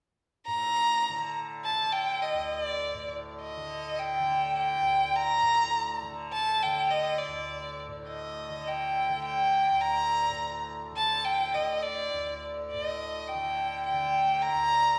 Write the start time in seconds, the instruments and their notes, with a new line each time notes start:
0.46 tanpura A2, violin A#5
1.09 tanpura D3
1.65 violin A5
1.73 tanpura D3
1.92 violin G5
2.22 violin D#5
2.34 tanpura D2
2.52 violin D#5
2.64 violin D5
2.94 tanpura A2
3.41 violin D#5
3.57 tanpura D3
3.99 violin G5
4.20 tanpura D3
4.58 violin G5
4.81 tanpura D2
5.16 violin A#5
5.42 tanpura A2
6.02 tanpura D3
6.33 violin A5
6.62 tanpura D3, violin G5
6.90 violin D#5
7.18 violin D5
7.28 tanpura D2
7.88 tanpura A2
8.08 violin D#5
8.50 tanpura D3
8.68 violin G5
9.09 tanpura D3
9.24 violin G5
9.71 tanpura D2
9.81 violin A#5
10.30 tanpura A2
10.92 tanpura D3
10.97 violin A5
11.25 violin G5
11.54 tanpura D3, violin D#5
11.83 violin D5
12.14 tanpura D2
12.71 tanpura A2, violin D5
12.84 violin D#5
13.28 violin G5
13.34 tanpura D3
13.86 violin G5
13.93 tanpura D3
14.43 violin A#5
14.54 tanpura D2